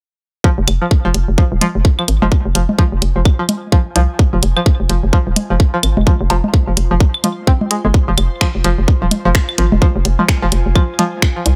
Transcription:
0.44 F3 F4, kick
0.58 F1
0.68 F1, closed hi-hat, claves
0.82 F3
0.91 kick
1.05 F1 F3 C5
1.14 F1, closed hi-hat
1.28 F1
1.38 F3, kick
1.52 D#1
1.61 F3, closed hi-hat, low conga
1.75 F1
1.85 kick
1.99 F3, claves
2.08 G#1, closed hi-hat
2.22 F1 F3 G#5, low conga
2.32 kick
2.45 F1
2.55 F1 F3, closed hi-hat
2.69 low conga
2.79 F3, kick
2.92 F1
3.02 F1, closed hi-hat
3.16 F1 F3
3.25 kick, claves
3.39 F3
3.49 closed hi-hat, low conga
3.72 F3, kick
3.96 C2 F3, closed hi-hat
4.19 kick
4.33 F1 F3
4.43 F1, closed hi-hat
4.57 F3, claves
4.66 kick
4.80 F1
4.89 F1 F3, closed hi-hat
5.03 F1
5.13 F3, kick
5.27 D#1
5.36 closed hi-hat, low conga
5.50 F1 F3
5.60 kick
5.74 F3
5.83 G#1, closed hi-hat, claves
5.97 F1 C6, low conga
6.07 F3, kick
6.21 F1
6.30 F1 F3, closed hi-hat, low woodblock
6.44 low conga
6.54 kick
6.68 F1 F3
6.77 F1, closed hi-hat
6.91 F1 F3
7.00 kick
7.14 claves
7.24 F3, closed hi-hat, low conga
7.47 C4, kick
7.61 low conga
7.71 G#3, closed hi-hat
7.85 G1 G#3
7.94 kick
8.08 F1 F3
8.18 F1, closed hi-hat, claves
8.41 F3, finger snap, kick
8.55 F1
8.64 F1 F3, closed hi-hat
8.78 F1
8.88 kick
9.02 D#1 F3
9.11 closed hi-hat, low conga
9.25 F1 F3
9.35 finger snap, kick
9.49 claves
9.58 G#1 F3, closed hi-hat
9.72 F1 G#5, low conga
9.82 F3, kick
9.96 F1
10.05 F1, closed hi-hat
10.19 F3, low conga
10.29 finger snap, kick
10.42 F1 F3
10.52 F1, closed hi-hat
10.66 F1
10.75 F3, kick, claves
10.99 F3, closed hi-hat, low conga
11.22 finger snap, kick
11.36 F3
11.46 C2, closed hi-hat

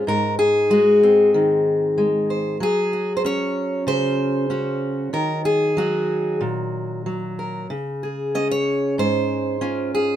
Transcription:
Already playing: G#3
0.07 G#2 A#4
0.39 G#4
0.70 G#3 F#4
1.03 C4
1.34 D#3
1.98 G#3
2.30 C5
2.60 F#3 G#4
2.93 F#4
3.17 C5
3.25 C#4 C#5
3.87 C#3 C5
4.50 C#4 F#4
5.13 D#3 A#4
5.45 G#4
5.77 F#3 F#4
6.41 A#2
7.06 F#3
7.39 A#4
7.70 C#3
8.03 G#4
8.35 C#4 D#5
8.51 C#5
8.98 G#2 C5
9.61 C#4 F4
9.95 G#4

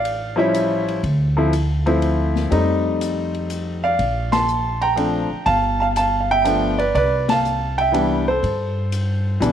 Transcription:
Already playing: A1 D5 F5
0.05 ride
0.36 F3 G3 C#4 E4 E5
0.40 C#5
0.54 hi-hat pedal, ride
0.88 ride
1.03 D2, kick, ride
1.37 F3 A3 C4 E4
1.53 hi-hat pedal, ride
1.86 F3 A3 C4 E4, ride
2.02 ride
2.36 snare
2.50 F2 G3 A3 C4 D#4, kick, ride
3.01 hi-hat pedal, ride
3.34 ride
3.50 hi-hat pedal, ride
3.84 D5 F5
3.99 A#1, kick, ride
4.32 A5 C6, snare, ride
4.48 hi-hat pedal
4.82 G5 A#5, ride
4.96 F3 A3 C4 D4, ride
5.30 muted upright bass stroke
5.46 G1 F5 A5, kick, ride
5.80 F5 A5
5.96 F5 A5, hi-hat pedal, ride
6.21 F5
6.31 E5 G5
6.44 F3 A3 B3 D4, hi-hat pedal, ride
6.78 B4 D5, ride
6.95 C2 B4 D5, kick, ride
7.29 F5 A5, snare, ride
7.45 hi-hat pedal
7.78 E5 G5, ride
7.92 E3 G3 B3 D4, ride
8.28 A4 C5
8.43 G2, kick, ride
8.92 hi-hat pedal, ride
9.40 B1 E3 G3 B3 D4, hi-hat pedal, ride

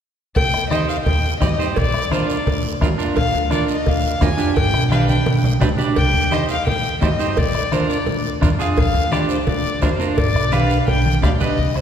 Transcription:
0.36 C2 G5, bombo low, cowbell, high conga, low conga, long guiro
0.54 D#2, bombo rim
0.70 D#4 G4 C5 D#5, bombo rim, high conga, short guiro
0.88 F5, short guiro
1.05 D#2 G5, cowbell, high conga, low conga, long guiro
1.40 G2 D#4 G4 D5 D#5, bombo low, bombo rim, high conga, low conga, low timbale, short guiro
1.58 D#4 G4 C5, short guiro
1.76 A#1 D5, bombo low, cowbell, high conga, long guiro
1.94 D2, bombo rim
2.11 D4 F4 A#4 C5, bombo rim, high conga, short guiro
2.29 D5, short guiro
2.46 D2, cowbell, high conga, low conga, long guiro
2.81 F2 D4 F4 A#4, bombo low, bombo rim, high conga, low conga, low timbale, short guiro
2.98 D4 F4 A#4, short guiro
3.16 A#1 F5, bombo low, cowbell, high conga, long guiro
3.34 D2
3.50 D4 F4 A#4 D5, bombo rim, high conga, short guiro
3.68 D#5, short guiro
3.86 D2 F5, cowbell, high conga, low conga, long guiro
4.21 F2 D4 F4 A#4 G#5, bombo low, bombo rim, high conga, low timbale, short guiro
4.38 D4 F4 G4, short guiro
4.56 G1 G5, bombo low, cowbell, high conga, low conga, long guiro
4.73 B1, bombo rim
4.90 D4 G4 B4 F5, bombo rim, high conga, short guiro
5.08 G5, high conga, short guiro
5.26 B1, cowbell, high conga, long guiro
5.44 low conga
5.61 D2 D4 G4 B4, bombo low, bombo rim, low conga, low timbale, short guiro
5.78 D4 G4 D5, low conga, short guiro
5.96 C2 G5, bombo low, cowbell, high conga, long guiro
6.13 D#2
6.31 D#4 G4 C5 D#5, bombo rim, high conga, short guiro
6.49 F5, short guiro
6.67 D#2 G5, cowbell, high conga, low conga, long guiro
7.01 G2 D#4 G4 C5 D#5, bombo low, bombo rim, high conga, low timbale, short guiro
7.19 D#4 G4 C5, short guiro
7.37 A#1 D5, bombo low, cowbell, high conga, low conga, long guiro
7.54 D2, bombo rim
7.72 D4 F4 A#4 C5, bombo rim, high conga, short guiro
7.90 D5, short guiro
8.06 D2, cowbell, high conga, low conga, long guiro
8.41 F2 D4 F4 A#4, bombo low, bombo rim, high conga, low conga, short guiro
8.59 D4 F4 G#4 F5, short guiro
8.77 A#1 F5, bombo low, cowbell, high conga, long guiro
8.94 D2
9.12 D4 F4 G4 D5, bombo rim, high conga, short guiro
9.29 C5, short guiro
9.46 D2 D5, cowbell, high conga, low conga, long guiro
9.81 F2 D4 F4 A#4 C5, bombo low, bombo rim, high conga, low timbale, short guiro
9.99 D4 F4 A#4, short guiro
10.16 G1 D5, bombo low, cowbell, high conga, low conga, long guiro
10.35 B1, bombo rim
10.52 D4 G4 B4 F5, bombo rim, high conga, short guiro
10.70 short guiro
10.87 B1 G5, cowbell, high conga, low conga, long guiro
11.05 high conga
11.22 D2 D4 G4 D5 F5, bombo low, bombo rim, low conga, low timbale, short guiro
11.40 D4 G4 B4 D#5, low conga, short guiro
11.58 C2, bombo low, high conga, low conga, long guiro
11.76 C5, bombo rim

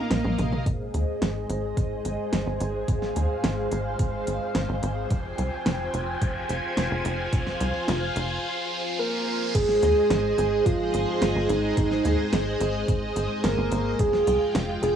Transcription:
Already playing: A#3 D#4 A#4 D#5 F5
0.11 A#1, snare, closed hi-hat, mid tom
0.24 A#1, mid tom
0.38 A#1, closed hi-hat, mid tom
0.52 mid tom
0.66 G#1 G#3 G#4 C5 D#5, kick, closed hi-hat, riser
0.94 D#2, closed hi-hat
1.22 G#1, snare, closed hi-hat
1.49 G#1, closed hi-hat
1.77 G#1, kick, closed hi-hat
2.05 G#1, closed hi-hat
2.33 G#1, snare, closed hi-hat
2.47 G#1
2.60 G#1, closed hi-hat
2.88 G#1 F5, kick, closed hi-hat
3.02 snare
3.16 D#2, closed hi-hat
3.44 G#1, snare, closed hi-hat
3.72 G#1, closed hi-hat
3.99 G#1, kick, closed hi-hat
4.27 G#1, closed hi-hat
4.55 G#1, snare, closed hi-hat
4.69 G#1
4.83 G#1, closed hi-hat
5.10 F1 F4 G5 G#5, kick, closed hi-hat
5.38 C2, closed hi-hat
5.66 F1, snare, closed hi-hat
5.94 F1, closed hi-hat
6.22 F1, kick, closed hi-hat
6.49 F1, closed hi-hat
6.77 F1, snare, closed hi-hat
6.91 F1
7.05 F1, closed hi-hat
7.33 F1 F5, kick, closed hi-hat
7.47 snare
7.60 C2, closed hi-hat
7.88 F1, snare, closed hi-hat
8.16 F1, closed hi-hat
8.99 A#4
9.55 G#1 G#3 G#4 C5 D#5, kick, closed hi-hat, crash
9.69 snare
9.83 D#2, closed hi-hat
10.10 G#1, snare, closed hi-hat
10.38 G#1 G#4, closed hi-hat
10.65 G#1 F4, kick, closed hi-hat
10.94 G#1, closed hi-hat
11.22 G#1, snare, closed hi-hat
11.36 G#1
11.49 G#1 D#4, closed hi-hat
11.77 G#1, kick, closed hi-hat
11.91 snare
12.05 D#2, closed hi-hat
12.33 G#1, snare, closed hi-hat
12.61 G#1, closed hi-hat
12.88 G#1, kick, closed hi-hat
13.16 G#1, closed hi-hat
13.44 G#1 A#4, snare, closed hi-hat
13.58 G#1
13.72 G#1, closed hi-hat
13.99 F1 G#3 F4 G#4 G5, kick, closed hi-hat
14.13 snare
14.27 C2, closed hi-hat
14.55 F1, snare, closed hi-hat
14.82 F1 G#4, closed hi-hat

